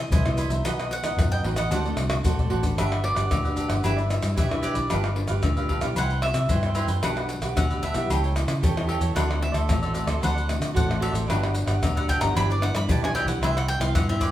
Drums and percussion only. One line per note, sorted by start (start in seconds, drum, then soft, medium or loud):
0.12 pandeiro medium
0.12 maracas medium
0.12 surdo loud
0.26 pandeiro soft
0.26 tamborim medium
0.26 maracas soft
0.38 pandeiro medium
0.38 maracas medium
0.50 pandeiro medium
0.50 maracas medium
0.65 pandeiro medium
0.65 tamborim medium
0.65 maracas medium
0.65 surdo medium
0.80 pandeiro soft
0.80 tamborim medium
0.80 maracas soft
0.91 pandeiro medium
1.04 pandeiro medium
1.04 tamborim medium
1.04 maracas medium
1.19 pandeiro medium
1.19 tamborim medium
1.19 maracas medium
1.19 surdo loud
1.33 pandeiro soft
1.33 maracas soft
1.44 pandeiro medium
1.56 pandeiro medium
1.56 tamborim medium
1.56 maracas medium
1.71 pandeiro medium
1.71 maracas medium
1.71 surdo medium
1.85 pandeiro soft
1.85 maracas soft
1.97 pandeiro medium
1.97 tamborim medium
1.97 maracas medium
2.10 pandeiro medium
2.10 tamborim loud
2.10 maracas medium
2.25 pandeiro medium
2.25 maracas medium
2.25 surdo loud
2.39 pandeiro soft
2.39 maracas soft
2.39 surdo medium
2.50 pandeiro medium
2.63 pandeiro medium
2.63 maracas medium
2.63 surdo medium
2.78 pandeiro medium
2.78 tamborim medium
2.78 low agogo medium
2.78 maracas medium
2.78 surdo medium
2.92 pandeiro soft
2.92 tamborim medium
2.92 maracas soft
3.04 pandeiro medium
3.16 pandeiro medium
3.16 tamborim medium
3.16 maracas medium
3.31 pandeiro medium
3.31 tamborim medium
3.31 high agogo medium
3.31 maracas medium
3.31 surdo medium
3.45 pandeiro soft
3.45 high agogo medium
3.45 maracas soft
3.57 pandeiro medium
3.57 high agogo medium
3.57 maracas medium
3.57 surdo medium
3.70 pandeiro medium
3.70 tamborim medium
3.70 maracas medium
3.84 pandeiro medium
3.84 low agogo medium
3.84 maracas medium
3.84 surdo medium
3.98 pandeiro soft
3.98 maracas soft
4.10 pandeiro medium
4.10 tamborim medium
4.10 maracas medium
4.22 pandeiro medium
4.22 tamborim medium
4.22 maracas medium
4.37 pandeiro medium
4.37 maracas medium
4.37 surdo medium
4.51 pandeiro soft
4.51 tamborim medium
4.51 maracas soft
4.63 pandeiro medium
4.63 high agogo medium
4.63 maracas medium
4.75 pandeiro medium
4.75 maracas medium
4.90 pandeiro medium
4.90 tamborim medium
4.90 low agogo medium
4.90 maracas medium
4.90 surdo medium
5.04 pandeiro soft
5.04 tamborim medium
5.04 maracas soft
5.16 pandeiro medium
5.28 pandeiro medium
5.28 tamborim medium
5.28 maracas medium
5.43 pandeiro medium
5.43 tamborim medium
5.43 high agogo medium
5.43 maracas medium
5.43 surdo medium
5.57 pandeiro soft
5.57 high agogo medium
5.57 maracas soft
5.69 pandeiro medium
5.69 high agogo medium
5.69 surdo medium
5.81 pandeiro medium
5.81 tamborim medium
5.81 maracas medium
5.96 pandeiro medium
5.96 low agogo medium
5.96 maracas medium
5.96 surdo medium
6.10 pandeiro soft
6.10 maracas soft
6.22 pandeiro medium
6.22 tamborim medium
6.34 pandeiro medium
6.34 tamborim medium
6.34 maracas medium
6.49 pandeiro medium
6.49 maracas medium
6.49 surdo loud
6.63 pandeiro soft
6.63 tamborim medium
6.63 maracas soft
6.75 pandeiro medium
6.75 high agogo medium
6.75 maracas medium
6.88 pandeiro medium
6.88 maracas medium
7.03 pandeiro medium
7.03 tamborim medium
7.03 low agogo medium
7.03 maracas medium
7.03 surdo medium
7.17 pandeiro soft
7.17 tamborim medium
7.17 maracas soft
7.29 pandeiro medium
7.29 maracas medium
7.42 pandeiro medium
7.42 tamborim medium
7.42 maracas medium
7.57 pandeiro medium
7.57 tamborim medium
7.57 high agogo medium
7.57 maracas medium
7.57 surdo loud
7.71 pandeiro soft
7.71 high agogo medium
7.71 maracas soft
7.83 pandeiro medium
7.83 high agogo medium
7.83 maracas medium
7.83 surdo medium
7.94 pandeiro medium
7.94 tamborim medium
7.94 maracas medium
8.10 pandeiro medium
8.10 low agogo medium
8.10 maracas medium
8.10 surdo medium
8.24 pandeiro soft
8.24 maracas soft
8.36 pandeiro medium
8.36 tamborim medium
8.36 maracas medium
8.48 pandeiro medium
8.48 tamborim medium
8.48 maracas medium
8.63 pandeiro medium
8.63 maracas medium
8.63 surdo loud
8.77 pandeiro soft
8.77 tamborim medium
8.77 maracas soft
8.89 pandeiro medium
8.89 high agogo medium
9.01 pandeiro medium
9.01 maracas medium
9.17 pandeiro medium
9.17 tamborim medium
9.17 low agogo medium
9.17 maracas medium
9.17 surdo medium
9.31 pandeiro soft
9.31 tamborim medium
9.31 maracas soft
9.42 pandeiro medium
9.54 pandeiro medium
9.54 tamborim medium
9.54 maracas medium
9.69 pandeiro medium
9.69 tamborim medium
9.69 high agogo medium
9.69 maracas medium
9.69 surdo loud
9.83 pandeiro soft
9.83 high agogo medium
9.83 maracas soft
9.95 pandeiro medium
9.95 high agogo medium
9.95 maracas medium
10.07 pandeiro medium
10.07 tamborim medium
10.07 maracas medium
10.23 pandeiro medium
10.23 low agogo medium
10.23 maracas medium
10.23 surdo medium
10.38 pandeiro soft
10.38 maracas soft
10.49 pandeiro medium
10.49 tamborim medium
10.49 maracas medium
10.62 pandeiro medium
10.62 tamborim medium
10.62 maracas medium
10.76 pandeiro medium
10.76 maracas medium
10.76 surdo loud
10.91 pandeiro soft
10.91 tamborim medium
10.91 maracas soft
11.03 pandeiro medium
11.03 high agogo medium
11.15 pandeiro medium
11.15 maracas medium
11.30 pandeiro medium
11.30 tamborim medium
11.30 low agogo medium
11.30 maracas medium
11.30 surdo medium
11.43 pandeiro soft
11.43 tamborim medium
11.43 maracas soft
11.55 pandeiro medium
11.55 maracas medium
11.68 pandeiro medium
11.68 tamborim medium
11.68 maracas medium
11.83 pandeiro medium
11.83 tamborim medium
11.83 high agogo medium
11.83 maracas medium
11.83 surdo loud
11.97 pandeiro soft
11.97 high agogo medium
11.97 maracas soft
12.09 pandeiro medium
12.09 high agogo medium
12.09 maracas medium
12.09 surdo medium
12.21 pandeiro medium
12.21 tamborim medium
12.21 maracas medium
12.37 pandeiro medium
12.37 low agogo medium
12.37 maracas medium
12.37 surdo medium
12.50 pandeiro soft
12.50 maracas soft
12.62 pandeiro medium
12.62 tamborim medium
12.75 pandeiro medium
12.75 tamborim medium
12.75 maracas medium
12.89 pandeiro medium
12.89 maracas medium
12.89 surdo loud
13.04 pandeiro soft
13.04 tamborim medium
13.04 maracas soft
13.16 pandeiro medium
13.16 high agogo medium
13.16 maracas medium
13.28 pandeiro medium
13.28 maracas medium
13.43 pandeiro medium
13.43 tamborim medium
13.43 low agogo medium
13.43 maracas medium
13.43 surdo medium
13.57 pandeiro soft
13.57 tamborim medium
13.57 maracas soft
13.69 pandeiro medium
13.81 pandeiro medium
13.81 tamborim medium
13.81 maracas medium
13.95 pandeiro medium
13.95 tamborim medium
13.95 high agogo medium
13.95 maracas medium
13.95 surdo loud
14.10 pandeiro soft
14.10 high agogo medium
14.10 maracas soft
14.21 pandeiro medium
14.21 high agogo medium
14.21 maracas medium
14.21 surdo medium